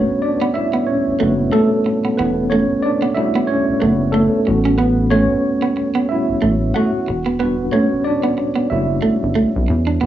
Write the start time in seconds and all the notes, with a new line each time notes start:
Already playing: G3 A3 B3 C#4 D4 F#4 B4 C#5
0.10 F#1
0.22 D4 D5
0.41 B3
0.54 E4 E5, muted clean electric guitar stroke
0.73 B3
0.87 C#4 C#5
1.08 F#1
1.19 F#1 G3 A3 B3 D4 F#4 B4
1.52 A3 A4
1.86 muted clean electric guitar stroke
2.04 B3
2.17 E1 B3 B4
2.49 A3 C#4 C#5
2.71 F#1
2.82 D4 D5
3.02 B3
3.14 G3 A3 D4 E4 F#4 E5, muted clean electric guitar stroke
3.35 B3
3.47 C#4 C#5
3.69 F#1
3.80 F#1 A3 B3 B4
4.12 A3 A4
4.47 A1 G3 B3 C#4 F#4, muted clean electric guitar stroke
4.65 C#4
4.78 B3 B4
5.10 A3 C#4 C#5
5.31 A1
5.62 B3
5.77 muted clean electric guitar stroke
5.95 B3
6.09 G3 B3 C#4 E4 F#4 E5
6.29 A1
6.42 A1 A3
6.75 A3 F#4 F#5
7.08 E1, muted clean electric guitar stroke
7.26 B3
7.39 G3 B3 D4 F#4 B4
7.72 A3 C#4 C#5
7.93 F#1
8.04 D4 D5
8.24 B3
8.38 muted clean electric guitar stroke
8.56 B3
8.70 F#1 G3 D4 E4 F#4 E5
9.02 G1 A3
9.23 G1
9.36 B1 A3
9.56 B1
9.68 E2, muted clean electric guitar stroke
9.87 D4
10.01 E1 G3 A3 B3 D4 F#4